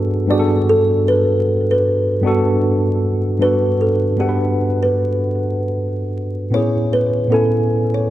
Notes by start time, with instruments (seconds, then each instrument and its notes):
Already playing: tine electric piano G2 B3 D4 F#4 G#4 A4
0.27 tine electric piano G2 B3 D4, kalimba D5
0.31 tine electric piano F#4 G#4
0.39 tine electric piano A4
0.69 kalimba A4
1.08 kalimba B4
1.71 kalimba B4
2.22 tine electric piano G2 B3 D4
2.26 tine electric piano F#4 A4
3.39 tine electric piano G2 B3 D4, kalimba B4
3.43 tine electric piano F#4 A4
3.81 kalimba A4
4.16 tine electric piano G2 B3 D4, kalimba G4
4.21 tine electric piano A4 F#5
4.29 tine electric piano B4
4.83 kalimba B4
6.50 tine electric piano A2 B3 C#4, kalimba C#5
6.55 tine electric piano E4 G#4
6.93 kalimba B4
7.28 tine electric piano A2 B3 C#4, kalimba A4
7.33 tine electric piano E4 G#5
7.94 kalimba C#5